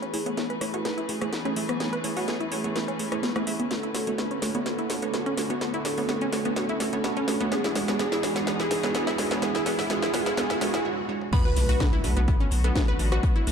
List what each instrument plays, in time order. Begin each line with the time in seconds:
Already playing: string section E3 A3 C#4 G#4 B4, soft synth lead G#4, riser
0.02 synth pluck C#4, closed hi-hat
0.14 synth pluck A3 E4 G#4 C#5, open hi-hat
0.26 synth pluck A3 B3 E4 G#4 C#5, closed hi-hat
0.37 synth pluck A3 B3 E4 G#4 C#5, snare, closed hi-hat
0.50 synth pluck B4, closed hi-hat
0.61 synth pluck A3 E4 G#4 C#5, cross-stick, open hi-hat
0.74 synth pluck A3 E4 F#4 G#4 C#5, closed hi-hat
0.85 synth pluck A3 B3 E4 G#4 B4, snare, closed hi-hat
0.98 synth pluck E4, closed hi-hat
1.09 synth pluck A3 E4 G#4 C#5, open hi-hat
1.21 synth pluck A3 B3 E4 G#4 C#5, cross-stick, closed hi-hat
1.33 synth pluck B3, snare, closed hi-hat
1.45 synth pluck A3 C#4 E4 G#4 B4, closed hi-hat
1.56 synth pluck A3 E4 G#4 E5, open hi-hat
1.69 synth pluck B3, cross-stick, closed hi-hat
1.80 synth pluck A3 B3 E4 G#4 C#5, snare, closed hi-hat
1.93 synth pluck B4, closed hi-hat
2.04 synth pluck A3 E4 G#4 C#5, open hi-hat
2.17 synth pluck A3 E4 F#4 G#4 C#5, open hi-hat
2.28 synth pluck A3 B3 E4 G#4 C#5, snare, closed hi-hat
2.40 synth pluck E4, closed hi-hat
2.52 synth pluck A3 E4 G#4 C#5, open hi-hat
2.64 synth pluck A3 B3 E4 G#4 C#5, closed hi-hat
2.75 synth pluck A3 B3 E4 G#4 B4, snare, closed hi-hat
2.88 synth pluck C#4, closed hi-hat
2.99 synth pluck A3 E4 G#4 C#5, open hi-hat
3.12 synth pluck A3 E4 G#4 B4 C#5, cross-stick, closed hi-hat
3.23 synth pluck B3, snare, closed hi-hat
3.36 synth pluck A3 B3 E4 G#4 B4, cross-stick, closed hi-hat
3.47 synth pluck A3 E4 G#4 E5, open hi-hat
3.60 synth pluck B3, closed hi-hat
3.71 string section D3 F#4, synth pluck A3 B3 D4 F#4 C#5, soft synth lead A4, snare, closed hi-hat
3.83 synth pluck E4, closed hi-hat
3.94 synth pluck A3 D4 F#4 C#5, snare, open hi-hat
4.07 synth pluck A3 B3 D4 F#4 C#5, closed hi-hat
4.18 synth pluck A3 B3 D4 F#4 C#5, snare, closed hi-hat
4.31 synth pluck C#4, closed hi-hat
4.42 synth pluck A3 D4 F#4 C#5, snare, open hi-hat
4.55 synth pluck A3 B3 D4 F#4 C#5, closed hi-hat
4.66 synth pluck A3 B3 D4 F#4 C#5, soft synth lead A4, snare, closed hi-hat
4.79 synth pluck E4, closed hi-hat
4.90 synth pluck A3 D4 F#4 C#5, snare, open hi-hat
5.02 synth pluck A3 B3 D4 F#4 C#5, closed hi-hat
5.14 synth pluck A3 B3 D4 F#4 C#5, snare, closed hi-hat
5.26 synth pluck C#4, closed hi-hat
5.37 synth pluck A3 D4 F#4 C#5, snare, open hi-hat
5.50 synth pluck A3 B3 D4 F#4 C#5, closed hi-hat
5.61 synth pluck A3 B3 D4 F#4 C#5, soft synth lead A4, snare, closed hi-hat
5.74 synth pluck E4, closed hi-hat
5.85 synth pluck A3 D4 F#4 C#5, snare, open hi-hat
5.98 synth pluck A3 B3 D4 F#4 C#5, open hi-hat
6.09 synth pluck A3 B3 D4 F#4 C#5, snare, closed hi-hat
6.21 synth pluck C#4, closed hi-hat
6.32 synth pluck A3 D4 F#4 C#5, snare, open hi-hat
6.45 synth pluck A3 B3 D4 F#4 C#5, closed hi-hat
6.56 synth pluck A3 B3 D4 F#4 C#5, soft synth lead A4, snare, closed hi-hat
6.69 synth pluck E4, closed hi-hat
6.80 synth pluck A3 D4 F#4 C#5, snare, open hi-hat
6.93 synth pluck A3 B3 D4 F#4 C#5, closed hi-hat
7.04 synth pluck A3 B3 D4 F#4 C#5, snare, closed hi-hat
7.17 synth pluck C#4, closed hi-hat
7.28 synth pluck A3 D4 F#4 C#5, snare, open hi-hat
7.40 synth pluck A3 B3 D4 F#4 C#5, closed hi-hat
7.52 string section E3 G#3 B3 G#4, synth pluck G#3 B3 D4 F#4 C#5, soft synth lead G#4, snare, closed hi-hat
7.64 synth pluck E4, snare, closed hi-hat
7.75 synth pluck G#3 D4 F#4 C#5, snare, open hi-hat
7.88 synth pluck G#3 B3 D4 F#4 C#5, snare, closed hi-hat
7.99 synth pluck G#3 B3 D4 F#4 C#5, soft synth lead G#4, snare, closed hi-hat
8.12 synth pluck E4, snare, closed hi-hat
8.23 synth pluck G#3 D4 F#4 C#5, snare, open hi-hat
8.36 synth pluck G#3 B3 D4 F#4 C#5, snare, closed hi-hat
8.47 synth pluck G#3 B3 D4 F#4 C#5, soft synth lead G#4, snare, closed hi-hat
8.60 synth pluck E4, snare, closed hi-hat
8.71 synth pluck G#3 D4 F#4 C#5, snare, open hi-hat
8.83 synth pluck G#3 B3 D4 F#4 C#5, snare, closed hi-hat
8.95 synth pluck G#3 B3 D4 F#4 C#5, soft synth lead G#4, snare, closed hi-hat
9.07 synth pluck E4, snare, closed hi-hat
9.18 synth pluck G#3 D4 F#4 C#5, snare, open hi-hat
9.31 synth pluck G#3 B3 D4 F#4 C#5, snare, closed hi-hat
9.42 synth pluck G#3 B3 D4 F#4 C#5, string section E4, soft synth lead G#4, snare, closed hi-hat
9.55 synth pluck E4, snare, closed hi-hat
9.66 synth pluck G#3 B3 D4 F#4 C#5, soft synth lead G#4, snare, open hi-hat
9.79 synth pluck E4, snare, open hi-hat
9.90 synth pluck G#3 B3 D4 F#4 C#5, soft synth lead G#4, snare, closed hi-hat
10.02 synth pluck E4, snare, closed hi-hat
10.14 synth pluck G#3 B3 D4 F#4 C#5, soft synth lead G#4, snare, open hi-hat
10.26 synth pluck E4, snare, closed hi-hat
10.37 synth pluck G#3 B3 D4 F#4 C#5, soft synth lead G#4, snare, closed hi-hat
10.50 synth pluck E4, snare, closed hi-hat
10.61 synth pluck G#3 B3 D4 F#4 C#5, soft synth lead G#4, snare, open hi-hat
10.74 synth pluck E4, snare, closed hi-hat
10.85 synth pluck G#3 D4 F#4 C#5
10.98 high tom
11.09 synth pluck G#3 D4 F#4 C#5, mid tom
11.21 mid tom
11.33 string section D3 F#3 A3 B3 F#4, synth pluck A3 B3 D4 F#4 B4, soft synth lead B4, synth bell B5, kick, closed hi-hat, crash, impact
11.45 synth pluck B4, closed hi-hat
11.56 analog synth bass B1, synth pluck A3 D4 F#4 B4, closed hi-hat, open hi-hat
11.69 synth pluck A3 D4 F#4 B4, open hi-hat
11.80 synth pluck A3 B3 D4 F#4 B4, kick, cross-stick, snare, closed hi-hat
11.93 synth pluck E4, snare, closed hi-hat
12.04 analog synth bass B1, synth pluck A3 D4 F#4 B4, closed hi-hat, open hi-hat
12.17 analog synth bass B1, synth pluck A3 B3 D4 F#4 B4, closed hi-hat
12.28 synth pluck A3 B3 D4 F#4 A4, kick, closed hi-hat
12.40 synth pluck C#4, closed hi-hat
12.51 analog synth bass B1, closed hi-hat, open hi-hat
12.64 synth pluck A3 B3 D4 F#4 A4, closed hi-hat
12.75 synth pluck A3 B3 D4 F#4 B4, kick, snare, closed hi-hat
12.88 synth pluck B4, closed hi-hat
12.99 analog synth bass A1, synth pluck A3 D4 F#4 B4, closed hi-hat, open hi-hat
13.12 synth pluck A3 D4 F#4 B4, cross-stick, closed hi-hat
13.23 synth pluck A3 B3 D4 F#4 B4, kick, closed hi-hat
13.36 synth pluck E4, closed hi-hat
13.47 analog synth bass B1, synth pluck A3 D4 F#4 B4, closed hi-hat, open hi-hat